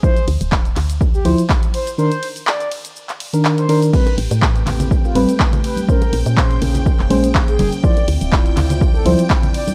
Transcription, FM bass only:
X:1
M:4/4
L:1/16
Q:"Swing 16ths" 1/4=123
K:Ddor
V:1 name="FM bass" clef=bass
z2 D,, D,,,3 D,,4 D,, z4 z | z16 | z2 A,,, A,,3 A,,,4 A,,, z4 z | z2 _B,,, _B,,3 B,,,3 F,,, B,,,4 F,,, z |
z2 D,, D,,,3 D,,4 D,, z4 z |]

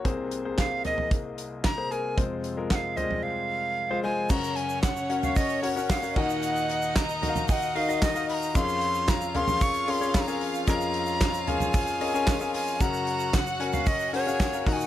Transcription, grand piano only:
X:1
M:4/4
L:1/16
Q:1/4=113
K:Gblyd
V:1 name="Grand piano"
[B,Ac]3 [B,Ac]3 [B,Ae]6- [B,Ae] [B,Ac] [B,AB]2 | [A,Fc]3 [A,FB]3 [=G,A,Fc]6- [G,A,Fc] [A,Fc] [A,Fc]2 | [DGBg]6 [DGBg]4 [DGBg] [DGBg]2 [DGBg] [EGBg]2- | [EGBg]6 [EGBef]4 [EGBf] [EGBe]2 [EGBf]3 |
[DABf]6 [DABf]4 [DABf] [DABd]2 [DABa]3 | [DABe]6 [DABf]4 [DABe] [DABa]2 [DABf]3 | [DGBg]6 [DGBa]4 [DGBg] [DGBf]2 [DGBf] [EGBg]2 |]
V:2 name="Grand piano" clef=bass
[C,,C,]16 | [F,,C,]16 | [G,,D,]12- [G,,D,]2 [E,,B,,]2- | [E,,B,,]12- [E,,B,,]2 z2 |
[F,,F,]16 | [F,,F,]16 | [G,,D,]12- [G,,D,]2 [E,,B,,]2 |]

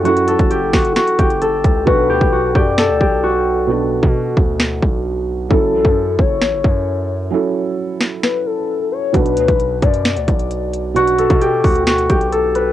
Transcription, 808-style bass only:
X:1
M:4/4
L:1/16
Q:1/4=132
K:Bm
V:1 name="808-style bass" clef=bass
F,,3 F,,,3 F,,,2 z2 F,,,4 C,,2 | B,,,2 D,, B,,,3 F,,3 D,, B,,,6- | B,,,3 B,,3 D,,4 B,,,6 | F,,,2 A,,, F,,3 F,,,2 A,,, F,,, F,,6 |
z16 | B,,,2 D,, B,,,3 F,,3 D,, B,,,6- | B,,,3 B,,3 D,,4 B,,,6 |]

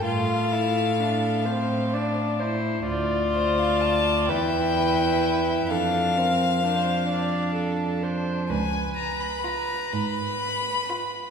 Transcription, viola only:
X:1
M:6/8
L:1/8
Q:3/8=42
K:Dm
V:1 name="Viola"
A3 c d c | d3 =B3 | A B c d A c | _c6 |]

